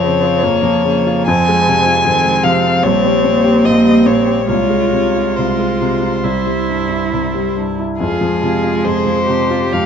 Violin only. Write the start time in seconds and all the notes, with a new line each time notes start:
Already playing: C#5
1.27 G#5
2.44 F5
2.84 C#5
3.65 D#5
4.06 C#5
4.50 C#5
5.36 C5
7.99 G#4
8.85 C5
9.73 F5